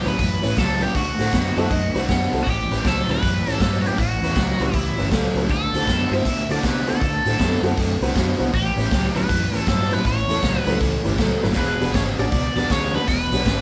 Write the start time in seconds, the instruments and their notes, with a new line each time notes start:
0.04 fingered electric bass D2, clean electric guitar A2 F#3, upright piano C#4 E4 G4 B4, overdriven electric guitar B4, snare, closed hi-hat
0.19 fingered electric bass F#2, clean electric guitar A2 E3, kick, closed hi-hat
0.42 fingered electric bass A2, clean electric guitar A2 E3, upright piano C#4 E4 G4 C#5, snare, closed hi-hat
0.57 fingered electric bass C#2, clean electric guitar A2 F#3, overdriven electric guitar A4, kick, snare, closed hi-hat
0.80 clean electric guitar A2 F#3, upright piano C#4 E4 G4 B4, overdriven electric guitar G4, snare, closed hi-hat
0.95 fingered electric bass D2, clean electric guitar D3 A3, overdriven electric guitar F#4, kick, closed hi-hat
1.18 fingered electric bass A2, clean electric guitar D3 A3, upright piano C4 E4 F#4 A4, snare, closed hi-hat
1.33 fingered electric bass F#2, clean electric guitar D3 B3, kick, snare, closed hi-hat
1.56 fingered electric bass F#2, clean electric guitar D3 B3, upright piano C4 E4 F#4 A4, electric slide guitar E5, snare, closed hi-hat
1.70 fingered electric bass F#2, clean electric guitar D3 A3, electric slide guitar D#5, kick, closed hi-hat
1.93 fingered electric bass C2, clean electric guitar D3 A3, upright piano C4 E4 F#4 B4, electric slide guitar D5, snare, closed hi-hat
2.09 fingered electric bass F#2, clean electric guitar D3 B3, electric slide guitar F#5, kick, snare, closed hi-hat
2.32 fingered electric bass C2, clean electric guitar D3 B3, upright piano C4 E4 F#4 A4, snare, closed hi-hat
2.44 fingered electric bass A1, clean electric guitar A2 E3, overdriven electric guitar F#4, kick, closed hi-hat
2.50 overdriven electric guitar G4
2.70 fingered electric bass A1, clean electric guitar A2 E3, upright piano C#4 E4 G4 B4, snare, closed hi-hat
2.85 fingered electric bass C#2, clean electric guitar A2 F#3, overdriven electric guitar A4, kick, snare, closed hi-hat
3.08 fingered electric bass D2, clean electric guitar A2 F#3, upright piano C#4 E4 G4 B4, overdriven electric guitar B4, snare, closed hi-hat
3.23 fingered electric bass F#2, clean electric guitar A2 E3, kick, snare, closed hi-hat
3.46 clean electric guitar A2 E3, fingered electric bass A2, upright piano C#4 E4 G4 C#5, snare, closed hi-hat
3.60 fingered electric bass G2, clean electric guitar A2 F#3, overdriven electric guitar A4, kick, snare, closed hi-hat
3.81 clean electric guitar A2 F#3, upright piano C#4, overdriven electric guitar F#4, closed hi-hat
3.85 upright piano E4 G4 B4, overdriven electric guitar G4, snare
3.98 fingered electric bass A1, clean electric guitar A2 E3, overdriven electric guitar F#4, kick, closed hi-hat
4.21 fingered electric bass E2, clean electric guitar A2 E3, upright piano C#4 E4 G4 B4, snare, closed hi-hat
4.36 fingered electric bass C#2, clean electric guitar A2 F#3, kick, snare, closed hi-hat
4.60 fingered electric bass C#2, clean electric guitar A2 F#3, upright piano C#4 E4 G4 B4, electric slide guitar G4, snare, closed hi-hat
4.73 fingered electric bass C#2, clean electric guitar A2 E3, overdriven electric guitar E4, kick, closed hi-hat
4.97 fingered electric bass G1, clean electric guitar A2 E3, upright piano C#4 E4 G4 B4, snare, closed hi-hat
5.11 fingered electric bass C#2, clean electric guitar A2 F#3, electric slide guitar A4, kick, snare, closed hi-hat
5.35 fingered electric bass C#2, clean electric guitar A2 F#3, upright piano C#4 E4 G4 B4, snare, closed hi-hat
5.49 fingered electric bass D2, clean electric guitar D3 A3, overdriven electric guitar A4, kick, closed hi-hat
5.73 fingered electric bass D2, clean electric guitar D3 A3, upright piano C4 E4 F#4 A4, snare, closed hi-hat
5.87 fingered electric bass F#2, clean electric guitar D3 B3, kick, snare, closed hi-hat
6.11 fingered electric bass G2, clean electric guitar D3 B3, upright piano C4 E4 F#4 C5, overdriven electric guitar E5, snare, closed hi-hat
6.25 fingered electric bass B2, clean electric guitar D3 A3, kick, snare, closed hi-hat
6.49 fingered electric bass D3, clean electric guitar D3 A3, upright piano C4 E4 F#4 A4, overdriven electric guitar D5, snare, closed hi-hat
6.63 fingered electric bass C3, clean electric guitar D3 B3, overdriven electric guitar B4, kick, snare, closed hi-hat
6.86 clean electric guitar D3 B3, upright piano C4 E4 F#4 A4, overdriven electric guitar A4, snare, closed hi-hat
7.01 fingered electric bass D2, clean electric guitar D3 A3, kick, closed hi-hat
7.24 fingered electric bass A2, clean electric guitar D3 A3, upright piano C4 E4 F#4 A4, snare, closed hi-hat
7.39 fingered electric bass F#2, clean electric guitar D3 B3, electric slide guitar C4 A4, kick, snare, closed hi-hat
7.62 fingered electric bass F#2, clean electric guitar D3 B3, upright piano C4 E4 F#4 A4, electric slide guitar C4 A4, snare, closed hi-hat
7.77 fingered electric bass F#2, clean electric guitar D3 A3, electric slide guitar C4 A4, kick, snare, closed hi-hat
8.01 fingered electric bass C2, clean electric guitar D3 A3, upright piano C4 E4 F#4 B4, electric slide guitar C4 E4, snare, closed hi-hat
8.15 fingered electric bass F#2, clean electric guitar D3 B3, electric slide guitar F#4, kick, snare, closed hi-hat
8.39 fingered electric bass C2, clean electric guitar D3 B3, upright piano C4 E4 F#4 B4, snare, closed hi-hat
8.53 fingered electric bass A1, clean electric guitar A2 E3, overdriven electric guitar G4, kick, closed hi-hat
8.76 fingered electric bass A1, clean electric guitar A2 E3, upright piano C#4 E4 G4 B4, snare, closed hi-hat
8.90 fingered electric bass C#2, clean electric guitar A2 F#3, kick, snare, closed hi-hat
9.14 fingered electric bass D2, clean electric guitar A2 F#3, upright piano C#4 E4 G4 B4, overdriven electric guitar B4, snare, closed hi-hat
9.28 fingered electric bass F#2, clean electric guitar A2 E3, kick, snare, closed hi-hat
9.52 fingered electric bass A2, clean electric guitar A2 E3, upright piano C#4 E4 G4 B4, snare, closed hi-hat
9.66 fingered electric bass G2, clean electric guitar A2 F#3, overdriven electric guitar A4, kick, snare, closed hi-hat
9.89 clean electric guitar A2 F#3, upright piano C#4 E4 G4 B4, overdriven electric guitar B4, snare, closed hi-hat
10.04 fingered electric bass A1, clean electric guitar A2 E3, overdriven electric guitar C#5, kick, closed hi-hat
10.28 fingered electric bass E2, clean electric guitar A2 E3, upright piano C#4 E4 G4 A4, snare, closed hi-hat
10.42 fingered electric bass C#2, clean electric guitar A2 F#3, kick, snare, closed hi-hat
10.59 overdriven electric guitar B4
10.66 fingered electric bass C#2, clean electric guitar A2 F#3, upright piano C#4 E4 G4 B4, electric slide guitar A4, snare, closed hi-hat
10.80 fingered electric bass C#2, clean electric guitar A2 E3, kick, snare, closed hi-hat
11.03 fingered electric bass G1, clean electric guitar A2 E3, upright piano C#4 E4 G4 B4, electric slide guitar G4, snare, closed hi-hat
11.18 fingered electric bass C#2, clean electric guitar A2 F#3, electric slide guitar A4, kick, snare, closed hi-hat
11.42 fingered electric bass G1, clean electric guitar A2 F#3, upright piano C#4 E4 G4 B4, snare
11.52 fingered electric bass E1, clean electric guitar E2 B2, horn section D4, kick, snare, closed hi-hat
11.57 horn section E4 G#4, overdriven electric guitar B4
11.79 fingered electric bass E1, clean electric guitar E2 B2, upright piano D4 F#4 G#4 B4, snare, closed hi-hat
11.93 fingered electric bass G#1, clean electric guitar E2 C#3, overdriven electric guitar C#5, kick, snare, closed hi-hat
12.17 fingered electric bass A1, clean electric guitar E2 C#3, upright piano D4 F#4 G#4 C#5, overdriven electric guitar D5, snare, closed hi-hat
12.31 fingered electric bass C#2, clean electric guitar E2 B2, kick, snare, closed hi-hat
12.55 clean electric guitar E2 B2, fingered electric bass E2, upright piano D4 F#4 G#4 B4, overdriven electric guitar D5, snare, closed hi-hat
12.69 fingered electric bass D2, clean electric guitar E2 C#3, horn section D4 E4 G#4, overdriven electric guitar C#5, kick, snare, closed hi-hat
12.93 clean electric guitar E2 C#3, upright piano D4 F#4 G#4 B4, overdriven electric guitar B4, snare, closed hi-hat
13.08 fingered electric bass E1, clean electric guitar E2 B2, overdriven electric guitar B4, kick, closed hi-hat
13.31 fingered electric bass B1, clean electric guitar E2 B2, upright piano D4 F#4 G#4 C#5, snare, closed hi-hat
13.45 fingered electric bass G#1, clean electric guitar E2 C#3, kick, snare, closed hi-hat